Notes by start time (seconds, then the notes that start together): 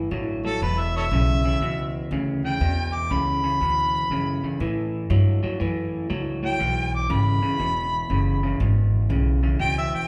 0.11 A1 A2 F#3
0.45 A2 F#3 A4
0.61 E1 E2 B2 B4
0.80 E5
0.97 A4 C#5 E5
1.11 B1 E2 C#3
1.44 E2 C#3
1.60 C#2 E2 B2
2.11 D2 E2 C#3
2.45 E2 C#3 G5
2.61 E2 B2
2.95 D6
3.10 C#2 E2 C#3 B5
3.44 E2 C#3
3.61 D2 E2 B2
4.10 E2 F#2 C#3
4.43 E2 C#3, muted upright bass stroke
4.60 A2 E3
5.10 G2 A2 F#3
5.43 A2 F#3, muted upright bass stroke
5.60 F#2 A2 E3
6.10 C#2 A2 F#3
6.43 A2 F#3 G5
6.59 B1 E2 B2
6.95 D6
7.10 G#1 E2 C#3 B5
7.42 E2 C#3, muted upright bass stroke
7.60 E1 E2 B2
8.10 F#1 E2 C#3
8.43 E2 C#3
8.60 G#1 E2 B2
9.10 B1 E2 C#3
9.43 E2 C#3
9.59 C#2 E2 B2 G5
9.78 E5
9.93 G5, muted upright bass stroke